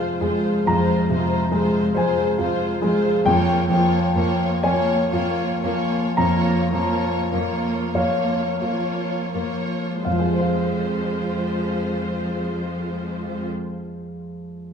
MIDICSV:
0, 0, Header, 1, 5, 480
1, 0, Start_track
1, 0, Key_signature, -4, "minor"
1, 0, Tempo, 928793
1, 349, Tempo, 859599
1, 1789, Time_signature, 12, 3, 24, 8
1, 1789, Tempo, 898204
1, 2269, Tempo, 961538
1, 2749, Tempo, 1052632
1, 3229, Tempo, 1149425
1, 3709, Tempo, 1293103
1, 4189, Tempo, 1438849
1, 4669, Tempo, 1327434
1, 6363, End_track
2, 0, Start_track
2, 0, Title_t, "Violin section"
2, 0, Program_c, 0, 48
2, 0, Note_on_c, 0, 72, 33
2, 108, Note_off_c, 0, 72, 0
2, 114, Note_on_c, 0, 72, 32
2, 343, Note_off_c, 0, 72, 0
2, 349, Note_on_c, 0, 72, 34
2, 586, Note_off_c, 0, 72, 0
2, 597, Note_on_c, 0, 72, 32
2, 823, Note_off_c, 0, 72, 0
2, 829, Note_on_c, 0, 72, 34
2, 1062, Note_off_c, 0, 72, 0
2, 1069, Note_on_c, 0, 72, 37
2, 1304, Note_off_c, 0, 72, 0
2, 1314, Note_on_c, 0, 72, 35
2, 1546, Note_off_c, 0, 72, 0
2, 1556, Note_on_c, 0, 72, 37
2, 1789, Note_off_c, 0, 72, 0
2, 1797, Note_on_c, 0, 73, 41
2, 2023, Note_off_c, 0, 73, 0
2, 2029, Note_on_c, 0, 73, 37
2, 2267, Note_off_c, 0, 73, 0
2, 2274, Note_on_c, 0, 73, 35
2, 2503, Note_off_c, 0, 73, 0
2, 2509, Note_on_c, 0, 73, 40
2, 2743, Note_off_c, 0, 73, 0
2, 2749, Note_on_c, 0, 73, 34
2, 2980, Note_off_c, 0, 73, 0
2, 2987, Note_on_c, 0, 73, 35
2, 3226, Note_off_c, 0, 73, 0
2, 3234, Note_on_c, 0, 73, 37
2, 3460, Note_off_c, 0, 73, 0
2, 3468, Note_on_c, 0, 73, 33
2, 3707, Note_off_c, 0, 73, 0
2, 3714, Note_on_c, 0, 73, 31
2, 3940, Note_off_c, 0, 73, 0
2, 3946, Note_on_c, 0, 73, 32
2, 4187, Note_off_c, 0, 73, 0
2, 4192, Note_on_c, 0, 73, 26
2, 4430, Note_off_c, 0, 73, 0
2, 4436, Note_on_c, 0, 73, 25
2, 4666, Note_off_c, 0, 73, 0
2, 4668, Note_on_c, 0, 72, 32
2, 5899, Note_off_c, 0, 72, 0
2, 6363, End_track
3, 0, Start_track
3, 0, Title_t, "Grand piano"
3, 0, Program_c, 1, 0
3, 0, Control_c, 1, 64, 127
3, 0, Note_on_c, 1, 41, 39
3, 0, Note_on_c, 1, 48, 30
3, 0, Note_on_c, 1, 56, 31
3, 0, Note_on_c, 1, 65, 32
3, 0, Note_on_c, 1, 72, 33
3, 0, Note_on_c, 1, 77, 47
3, 109, Note_off_c, 1, 56, 0
3, 109, Note_on_c, 1, 56, 31
3, 255, Note_off_c, 1, 65, 0
3, 329, Note_off_c, 1, 77, 0
3, 330, Note_off_c, 1, 41, 0
3, 347, Note_on_c, 1, 41, 36
3, 347, Note_on_c, 1, 82, 51
3, 494, Note_off_c, 1, 56, 0
3, 582, Note_off_c, 1, 48, 0
3, 582, Note_on_c, 1, 48, 33
3, 818, Note_on_c, 1, 56, 32
3, 965, Note_off_c, 1, 48, 0
3, 1042, Note_off_c, 1, 82, 0
3, 1059, Note_off_c, 1, 72, 0
3, 1059, Note_on_c, 1, 72, 39
3, 1071, Note_on_c, 1, 80, 41
3, 1206, Note_off_c, 1, 56, 0
3, 1301, Note_on_c, 1, 65, 34
3, 1448, Note_off_c, 1, 72, 0
3, 1545, Note_on_c, 1, 56, 36
3, 1690, Note_off_c, 1, 65, 0
3, 1766, Note_off_c, 1, 41, 0
3, 1770, Note_off_c, 1, 80, 0
3, 1788, Note_off_c, 1, 56, 0
3, 1788, Note_on_c, 1, 41, 44
3, 1790, Note_on_c, 1, 79, 58
3, 1799, Control_c, 1, 64, 0
3, 1879, Control_c, 1, 64, 127
3, 2026, Note_on_c, 1, 53, 36
3, 2272, Note_on_c, 1, 58, 37
3, 2410, Note_off_c, 1, 53, 0
3, 2485, Note_off_c, 1, 79, 0
3, 2509, Note_on_c, 1, 80, 53
3, 2511, Note_on_c, 1, 73, 38
3, 2651, Note_off_c, 1, 58, 0
3, 2755, Note_on_c, 1, 65, 37
3, 2892, Note_off_c, 1, 73, 0
3, 2990, Note_on_c, 1, 58, 34
3, 3134, Note_off_c, 1, 65, 0
3, 3211, Note_off_c, 1, 41, 0
3, 3213, Note_off_c, 1, 80, 0
3, 3231, Note_on_c, 1, 82, 51
3, 3234, Note_on_c, 1, 41, 38
3, 3370, Note_off_c, 1, 58, 0
3, 3464, Note_on_c, 1, 53, 33
3, 3711, Note_on_c, 1, 58, 30
3, 3849, Note_off_c, 1, 53, 0
3, 3928, Note_off_c, 1, 82, 0
3, 3944, Note_on_c, 1, 73, 32
3, 3946, Note_on_c, 1, 77, 37
3, 4089, Note_off_c, 1, 58, 0
3, 4190, Note_on_c, 1, 65, 26
3, 4334, Note_off_c, 1, 73, 0
3, 4422, Note_off_c, 1, 77, 0
3, 4433, Note_on_c, 1, 58, 25
3, 4580, Note_off_c, 1, 65, 0
3, 4658, Note_off_c, 1, 41, 0
3, 4669, Note_off_c, 1, 58, 0
3, 4669, Note_on_c, 1, 77, 31
3, 4670, Note_on_c, 1, 41, 23
3, 4681, Control_c, 1, 64, 0
3, 4696, Note_on_c, 1, 53, 22
3, 4720, Note_on_c, 1, 56, 23
3, 4745, Note_on_c, 1, 65, 23
3, 4771, Note_on_c, 1, 72, 22
3, 4772, Control_c, 1, 64, 127
3, 4791, Note_off_c, 1, 77, 0
3, 4796, Note_on_c, 1, 77, 24
3, 5901, Note_off_c, 1, 41, 0
3, 5927, Note_off_c, 1, 53, 0
3, 5951, Note_off_c, 1, 56, 0
3, 5976, Note_off_c, 1, 65, 0
3, 6002, Note_off_c, 1, 72, 0
3, 6027, Note_off_c, 1, 77, 0
3, 6363, End_track
4, 0, Start_track
4, 0, Title_t, "Viola section"
4, 0, Program_c, 2, 48
4, 0, Note_on_c, 2, 56, 34
4, 0, Note_on_c, 2, 65, 33
4, 105, Note_off_c, 2, 56, 0
4, 106, Note_off_c, 2, 65, 0
4, 111, Note_on_c, 2, 65, 30
4, 113, Note_on_c, 2, 56, 31
4, 344, Note_off_c, 2, 65, 0
4, 345, Note_off_c, 2, 56, 0
4, 351, Note_on_c, 2, 56, 34
4, 351, Note_on_c, 2, 65, 34
4, 584, Note_off_c, 2, 65, 0
4, 585, Note_off_c, 2, 56, 0
4, 591, Note_on_c, 2, 56, 33
4, 591, Note_on_c, 2, 65, 34
4, 817, Note_off_c, 2, 65, 0
4, 819, Note_off_c, 2, 56, 0
4, 824, Note_on_c, 2, 65, 33
4, 826, Note_on_c, 2, 56, 35
4, 1058, Note_off_c, 2, 56, 0
4, 1059, Note_off_c, 2, 65, 0
4, 1065, Note_on_c, 2, 56, 35
4, 1065, Note_on_c, 2, 65, 33
4, 1302, Note_off_c, 2, 56, 0
4, 1302, Note_off_c, 2, 65, 0
4, 1308, Note_on_c, 2, 56, 36
4, 1310, Note_on_c, 2, 65, 35
4, 1540, Note_off_c, 2, 56, 0
4, 1541, Note_off_c, 2, 65, 0
4, 1547, Note_on_c, 2, 56, 37
4, 1548, Note_on_c, 2, 65, 37
4, 1784, Note_off_c, 2, 56, 0
4, 1785, Note_off_c, 2, 65, 0
4, 1792, Note_on_c, 2, 58, 41
4, 1792, Note_on_c, 2, 65, 40
4, 2022, Note_off_c, 2, 58, 0
4, 2022, Note_off_c, 2, 65, 0
4, 2028, Note_on_c, 2, 65, 35
4, 2029, Note_on_c, 2, 58, 36
4, 2266, Note_off_c, 2, 65, 0
4, 2267, Note_off_c, 2, 58, 0
4, 2274, Note_on_c, 2, 58, 34
4, 2274, Note_on_c, 2, 65, 35
4, 2502, Note_off_c, 2, 58, 0
4, 2503, Note_off_c, 2, 65, 0
4, 2512, Note_on_c, 2, 58, 38
4, 2512, Note_on_c, 2, 65, 39
4, 2748, Note_off_c, 2, 58, 0
4, 2749, Note_off_c, 2, 65, 0
4, 2754, Note_on_c, 2, 58, 35
4, 2754, Note_on_c, 2, 65, 37
4, 2982, Note_off_c, 2, 58, 0
4, 2982, Note_off_c, 2, 65, 0
4, 2988, Note_on_c, 2, 58, 36
4, 2988, Note_on_c, 2, 65, 36
4, 3226, Note_off_c, 2, 58, 0
4, 3226, Note_off_c, 2, 65, 0
4, 3233, Note_on_c, 2, 58, 37
4, 3233, Note_on_c, 2, 65, 35
4, 3458, Note_off_c, 2, 58, 0
4, 3459, Note_off_c, 2, 65, 0
4, 3463, Note_on_c, 2, 58, 34
4, 3464, Note_on_c, 2, 65, 33
4, 3705, Note_off_c, 2, 58, 0
4, 3705, Note_off_c, 2, 65, 0
4, 3711, Note_on_c, 2, 58, 33
4, 3712, Note_on_c, 2, 65, 33
4, 3938, Note_off_c, 2, 58, 0
4, 3939, Note_off_c, 2, 65, 0
4, 3945, Note_on_c, 2, 58, 31
4, 3945, Note_on_c, 2, 65, 31
4, 4185, Note_off_c, 2, 58, 0
4, 4185, Note_off_c, 2, 65, 0
4, 4189, Note_on_c, 2, 65, 29
4, 4190, Note_on_c, 2, 58, 27
4, 4428, Note_off_c, 2, 65, 0
4, 4429, Note_off_c, 2, 58, 0
4, 4433, Note_on_c, 2, 58, 25
4, 4435, Note_on_c, 2, 65, 25
4, 4664, Note_off_c, 2, 58, 0
4, 4665, Note_off_c, 2, 65, 0
4, 4670, Note_on_c, 2, 56, 29
4, 4670, Note_on_c, 2, 65, 30
4, 5902, Note_off_c, 2, 56, 0
4, 5902, Note_off_c, 2, 65, 0
4, 6363, End_track
5, 0, Start_track
5, 0, Title_t, "Cello section"
5, 0, Program_c, 3, 48
5, 110, Note_on_c, 3, 41, 34
5, 151, Note_off_c, 3, 41, 0
5, 349, Note_on_c, 3, 41, 37
5, 394, Note_off_c, 3, 41, 0
5, 588, Note_on_c, 3, 41, 37
5, 633, Note_off_c, 3, 41, 0
5, 826, Note_on_c, 3, 41, 36
5, 871, Note_off_c, 3, 41, 0
5, 1066, Note_on_c, 3, 41, 38
5, 1110, Note_off_c, 3, 41, 0
5, 1310, Note_on_c, 3, 41, 37
5, 1354, Note_off_c, 3, 41, 0
5, 1551, Note_on_c, 3, 41, 35
5, 1596, Note_off_c, 3, 41, 0
5, 1794, Note_on_c, 3, 41, 44
5, 1837, Note_off_c, 3, 41, 0
5, 2032, Note_on_c, 3, 41, 40
5, 2074, Note_off_c, 3, 41, 0
5, 2274, Note_on_c, 3, 41, 40
5, 2313, Note_off_c, 3, 41, 0
5, 2510, Note_on_c, 3, 41, 44
5, 2550, Note_off_c, 3, 41, 0
5, 2755, Note_on_c, 3, 41, 40
5, 2791, Note_off_c, 3, 41, 0
5, 2990, Note_on_c, 3, 41, 39
5, 3027, Note_off_c, 3, 41, 0
5, 3235, Note_on_c, 3, 41, 40
5, 3269, Note_off_c, 3, 41, 0
5, 3467, Note_on_c, 3, 41, 34
5, 3501, Note_off_c, 3, 41, 0
5, 3714, Note_on_c, 3, 41, 33
5, 3744, Note_off_c, 3, 41, 0
5, 3945, Note_on_c, 3, 41, 33
5, 3974, Note_off_c, 3, 41, 0
5, 4192, Note_on_c, 3, 41, 27
5, 4219, Note_off_c, 3, 41, 0
5, 4435, Note_on_c, 3, 41, 23
5, 4462, Note_off_c, 3, 41, 0
5, 4671, Note_on_c, 3, 41, 31
5, 5903, Note_off_c, 3, 41, 0
5, 6363, End_track
0, 0, End_of_file